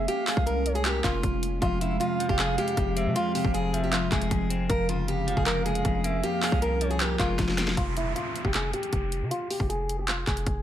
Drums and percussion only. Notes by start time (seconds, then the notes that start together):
0.08 closed hi-hat
0.27 clap, open hi-hat
0.37 kick
0.47 closed hi-hat
0.66 closed hi-hat
0.75 closed hi-hat
0.85 clap, closed hi-hat
1.04 kick, clap, closed hi-hat
1.23 kick, closed hi-hat
1.43 closed hi-hat
1.62 kick, closed hi-hat
1.81 closed hi-hat
2.01 closed hi-hat
2.20 closed hi-hat
2.29 kick
2.39 clap, closed hi-hat
2.58 closed hi-hat
2.68 closed hi-hat
2.77 kick, closed hi-hat
2.97 closed hi-hat
3.16 closed hi-hat
3.35 open hi-hat
3.45 kick
3.55 closed hi-hat
3.74 closed hi-hat
3.92 clap, closed hi-hat
4.12 kick, clap, closed hi-hat
4.22 closed hi-hat
4.31 kick, closed hi-hat
4.50 closed hi-hat
4.70 kick, closed hi-hat
4.89 closed hi-hat
5.08 closed hi-hat
5.28 closed hi-hat
5.37 kick
5.46 clap, closed hi-hat
5.66 closed hi-hat
5.75 closed hi-hat
5.85 kick, closed hi-hat
6.04 closed hi-hat
6.23 closed hi-hat
6.43 clap, open hi-hat
6.52 kick
6.62 closed hi-hat
6.81 closed hi-hat
6.91 closed hi-hat
7.00 clap, closed hi-hat
7.19 kick, clap, closed hi-hat
7.39 kick, snare, closed hi-hat
7.48 snare
7.58 snare, closed hi-hat
7.68 snare
7.77 kick, closed hi-hat
7.97 closed hi-hat
8.16 closed hi-hat
8.36 closed hi-hat
8.45 kick
8.54 clap, closed hi-hat
8.73 closed hi-hat
8.83 closed hi-hat
8.93 kick, closed hi-hat
9.12 closed hi-hat
9.31 closed hi-hat
9.51 open hi-hat
9.60 kick
9.70 closed hi-hat
9.89 closed hi-hat
10.08 clap, closed hi-hat
10.27 kick, clap, closed hi-hat
10.37 closed hi-hat
10.47 kick, closed hi-hat